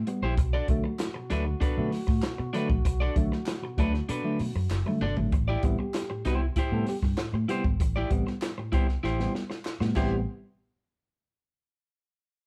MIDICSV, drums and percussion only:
0, 0, Header, 1, 2, 480
1, 0, Start_track
1, 0, Tempo, 618748
1, 289, Time_signature, 4, 2, 24, 8
1, 9667, End_track
2, 0, Start_track
2, 0, Title_t, "Drums"
2, 53, Note_on_c, 9, 42, 70
2, 131, Note_off_c, 9, 42, 0
2, 291, Note_on_c, 9, 36, 122
2, 291, Note_on_c, 9, 42, 102
2, 369, Note_off_c, 9, 36, 0
2, 369, Note_off_c, 9, 42, 0
2, 529, Note_on_c, 9, 42, 81
2, 531, Note_on_c, 9, 36, 94
2, 606, Note_off_c, 9, 42, 0
2, 609, Note_off_c, 9, 36, 0
2, 771, Note_on_c, 9, 39, 104
2, 775, Note_on_c, 9, 42, 99
2, 776, Note_on_c, 9, 38, 109
2, 849, Note_off_c, 9, 39, 0
2, 852, Note_off_c, 9, 42, 0
2, 853, Note_off_c, 9, 38, 0
2, 1011, Note_on_c, 9, 42, 71
2, 1013, Note_on_c, 9, 38, 30
2, 1089, Note_off_c, 9, 42, 0
2, 1090, Note_off_c, 9, 38, 0
2, 1252, Note_on_c, 9, 36, 106
2, 1254, Note_on_c, 9, 42, 89
2, 1330, Note_off_c, 9, 36, 0
2, 1331, Note_off_c, 9, 42, 0
2, 1492, Note_on_c, 9, 46, 85
2, 1496, Note_on_c, 9, 38, 38
2, 1570, Note_off_c, 9, 46, 0
2, 1574, Note_off_c, 9, 38, 0
2, 1613, Note_on_c, 9, 36, 110
2, 1619, Note_on_c, 9, 38, 41
2, 1690, Note_off_c, 9, 36, 0
2, 1696, Note_off_c, 9, 38, 0
2, 1726, Note_on_c, 9, 39, 94
2, 1731, Note_on_c, 9, 38, 113
2, 1732, Note_on_c, 9, 42, 97
2, 1803, Note_off_c, 9, 39, 0
2, 1809, Note_off_c, 9, 38, 0
2, 1810, Note_off_c, 9, 42, 0
2, 1972, Note_on_c, 9, 42, 76
2, 1974, Note_on_c, 9, 38, 35
2, 2050, Note_off_c, 9, 42, 0
2, 2052, Note_off_c, 9, 38, 0
2, 2092, Note_on_c, 9, 36, 106
2, 2169, Note_off_c, 9, 36, 0
2, 2212, Note_on_c, 9, 36, 111
2, 2213, Note_on_c, 9, 42, 113
2, 2290, Note_off_c, 9, 36, 0
2, 2290, Note_off_c, 9, 42, 0
2, 2452, Note_on_c, 9, 36, 104
2, 2452, Note_on_c, 9, 42, 77
2, 2529, Note_off_c, 9, 36, 0
2, 2529, Note_off_c, 9, 42, 0
2, 2579, Note_on_c, 9, 38, 34
2, 2657, Note_off_c, 9, 38, 0
2, 2687, Note_on_c, 9, 39, 99
2, 2696, Note_on_c, 9, 42, 93
2, 2697, Note_on_c, 9, 38, 109
2, 2764, Note_off_c, 9, 39, 0
2, 2773, Note_off_c, 9, 42, 0
2, 2774, Note_off_c, 9, 38, 0
2, 2932, Note_on_c, 9, 36, 88
2, 2932, Note_on_c, 9, 42, 73
2, 3009, Note_off_c, 9, 36, 0
2, 3010, Note_off_c, 9, 42, 0
2, 3057, Note_on_c, 9, 38, 35
2, 3134, Note_off_c, 9, 38, 0
2, 3172, Note_on_c, 9, 42, 96
2, 3250, Note_off_c, 9, 42, 0
2, 3408, Note_on_c, 9, 46, 78
2, 3485, Note_off_c, 9, 46, 0
2, 3650, Note_on_c, 9, 39, 97
2, 3654, Note_on_c, 9, 38, 68
2, 3728, Note_off_c, 9, 39, 0
2, 3732, Note_off_c, 9, 38, 0
2, 3770, Note_on_c, 9, 48, 64
2, 3847, Note_off_c, 9, 48, 0
2, 3888, Note_on_c, 9, 45, 97
2, 3966, Note_off_c, 9, 45, 0
2, 4008, Note_on_c, 9, 43, 107
2, 4086, Note_off_c, 9, 43, 0
2, 4129, Note_on_c, 9, 42, 101
2, 4130, Note_on_c, 9, 36, 114
2, 4207, Note_off_c, 9, 36, 0
2, 4207, Note_off_c, 9, 42, 0
2, 4366, Note_on_c, 9, 42, 78
2, 4369, Note_on_c, 9, 36, 99
2, 4443, Note_off_c, 9, 42, 0
2, 4447, Note_off_c, 9, 36, 0
2, 4609, Note_on_c, 9, 39, 95
2, 4611, Note_on_c, 9, 42, 103
2, 4613, Note_on_c, 9, 38, 105
2, 4687, Note_off_c, 9, 39, 0
2, 4689, Note_off_c, 9, 42, 0
2, 4690, Note_off_c, 9, 38, 0
2, 4848, Note_on_c, 9, 42, 70
2, 4850, Note_on_c, 9, 38, 33
2, 4926, Note_off_c, 9, 42, 0
2, 4927, Note_off_c, 9, 38, 0
2, 5088, Note_on_c, 9, 42, 84
2, 5090, Note_on_c, 9, 36, 93
2, 5166, Note_off_c, 9, 42, 0
2, 5167, Note_off_c, 9, 36, 0
2, 5325, Note_on_c, 9, 46, 83
2, 5330, Note_on_c, 9, 38, 39
2, 5403, Note_off_c, 9, 46, 0
2, 5407, Note_off_c, 9, 38, 0
2, 5450, Note_on_c, 9, 36, 97
2, 5454, Note_on_c, 9, 38, 37
2, 5528, Note_off_c, 9, 36, 0
2, 5531, Note_off_c, 9, 38, 0
2, 5567, Note_on_c, 9, 38, 109
2, 5568, Note_on_c, 9, 42, 98
2, 5569, Note_on_c, 9, 39, 94
2, 5645, Note_off_c, 9, 38, 0
2, 5645, Note_off_c, 9, 42, 0
2, 5646, Note_off_c, 9, 39, 0
2, 5811, Note_on_c, 9, 42, 85
2, 5813, Note_on_c, 9, 38, 34
2, 5888, Note_off_c, 9, 42, 0
2, 5890, Note_off_c, 9, 38, 0
2, 5930, Note_on_c, 9, 36, 103
2, 6008, Note_off_c, 9, 36, 0
2, 6051, Note_on_c, 9, 36, 115
2, 6052, Note_on_c, 9, 42, 107
2, 6129, Note_off_c, 9, 36, 0
2, 6130, Note_off_c, 9, 42, 0
2, 6288, Note_on_c, 9, 42, 80
2, 6290, Note_on_c, 9, 36, 97
2, 6366, Note_off_c, 9, 42, 0
2, 6368, Note_off_c, 9, 36, 0
2, 6416, Note_on_c, 9, 38, 30
2, 6494, Note_off_c, 9, 38, 0
2, 6531, Note_on_c, 9, 39, 97
2, 6534, Note_on_c, 9, 42, 86
2, 6535, Note_on_c, 9, 38, 103
2, 6608, Note_off_c, 9, 39, 0
2, 6612, Note_off_c, 9, 42, 0
2, 6613, Note_off_c, 9, 38, 0
2, 6771, Note_on_c, 9, 36, 89
2, 6771, Note_on_c, 9, 42, 66
2, 6848, Note_off_c, 9, 42, 0
2, 6849, Note_off_c, 9, 36, 0
2, 6894, Note_on_c, 9, 38, 31
2, 6971, Note_off_c, 9, 38, 0
2, 7013, Note_on_c, 9, 38, 55
2, 7091, Note_off_c, 9, 38, 0
2, 7134, Note_on_c, 9, 38, 52
2, 7212, Note_off_c, 9, 38, 0
2, 7255, Note_on_c, 9, 38, 73
2, 7333, Note_off_c, 9, 38, 0
2, 7374, Note_on_c, 9, 38, 70
2, 7451, Note_off_c, 9, 38, 0
2, 7487, Note_on_c, 9, 39, 95
2, 7493, Note_on_c, 9, 38, 89
2, 7565, Note_off_c, 9, 39, 0
2, 7571, Note_off_c, 9, 38, 0
2, 7611, Note_on_c, 9, 38, 84
2, 7688, Note_off_c, 9, 38, 0
2, 7728, Note_on_c, 9, 39, 85
2, 7730, Note_on_c, 9, 36, 96
2, 7731, Note_on_c, 9, 49, 80
2, 7805, Note_off_c, 9, 39, 0
2, 7807, Note_off_c, 9, 36, 0
2, 7808, Note_off_c, 9, 49, 0
2, 9667, End_track
0, 0, End_of_file